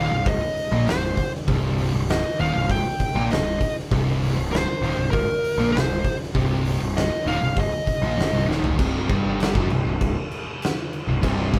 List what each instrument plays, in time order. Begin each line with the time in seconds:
Already playing: synth drone C3 D3 G3, distorted electric guitar D#3, lead electric guitar F5
0.11 picked electric bass C1, distorted electric guitar C2
0.26 lead electric guitar D#5, kick, open hi-hat
0.57 open hi-hat
0.71 picked electric bass A#1, distorted electric guitar A#2 A#3
0.86 picked electric bass C1, distorted electric guitar C2, lead electric guitar C5, snare, open hi-hat
1.17 kick, open hi-hat
1.35 snare
1.47 picked electric bass C1, distorted electric guitar C2 C3, kick, open hi-hat
1.78 open hi-hat
1.93 picked electric bass C1, distorted electric guitar C2
2.08 lead electric guitar D#5, snare, open hi-hat
2.39 picked electric bass D#1, distorted electric guitar D#2 D#3, lead electric guitar F5, open hi-hat
2.55 picked electric bass C1, distorted electric guitar C2
2.70 lead electric guitar G5, kick, open hi-hat
3.00 kick, open hi-hat
3.15 picked electric bass A#1, distorted electric guitar A#2 A#3
3.30 picked electric bass C1, distorted electric guitar C2, lead electric guitar D#5, snare, open hi-hat
3.61 kick, open hi-hat
3.79 snare
3.91 picked electric bass C1, distorted electric guitar C2 C3, kick, open hi-hat
4.22 open hi-hat
4.36 picked electric bass C1, distorted electric guitar C2
4.52 lead electric guitar C5, snare, open hi-hat
4.81 picked electric bass D#1, distorted electric guitar D#2 D#3, open hi-hat
4.96 picked electric bass C1, distorted electric guitar C2
5.11 lead electric guitar A#4, kick, open hi-hat
5.44 open hi-hat
5.58 picked electric bass A#1, distorted electric guitar A#2 A#3
5.72 picked electric bass C1, distorted electric guitar C2, lead electric guitar C5, open hi-hat
5.77 snare
6.05 kick, open hi-hat
6.23 snare
6.34 picked electric bass C1, distorted electric guitar C2 C3, kick, open hi-hat
6.65 open hi-hat
6.80 picked electric bass C1, distorted electric guitar C2
6.95 lead electric guitar D#5, snare, open hi-hat
7.25 picked electric bass D#1, distorted electric guitar D#2 D#3, lead electric guitar F5, open hi-hat
7.41 picked electric bass C1, distorted electric guitar C2
7.56 lead electric guitar D#5, kick, open hi-hat
7.87 kick, open hi-hat
8.01 picked electric bass A#1, distorted electric guitar A#2 A#3
8.17 picked electric bass F1, distorted electric guitar F2 F3, snare, open hi-hat
8.32 picked electric bass C1, distorted electric guitar C2 C3
8.47 picked electric bass D#1, distorted electric guitar D#2 D#3, snare
8.64 floor tom
8.78 picked electric bass C1, distorted electric guitar C2 C3, synth drone C3 G3 D4, kick, crash
9.09 picked electric bass G1, distorted electric guitar G2 G3, kick, crash
9.40 snare, crash
9.54 picked electric bass F#1, distorted electric guitar F#2 F#3, kick
9.70 picked electric bass C1, distorted electric guitar C2, crash
9.85 picked electric bass C1, distorted electric guitar C2
10.01 kick, crash
10.32 crash
10.62 snare, crash
10.93 crash
11.07 picked electric bass C1, distorted electric guitar C2
11.22 picked electric bass C1, distorted electric guitar C2 C3, kick, crash
11.53 picked electric bass G1, distorted electric guitar G2 G3, kick, crash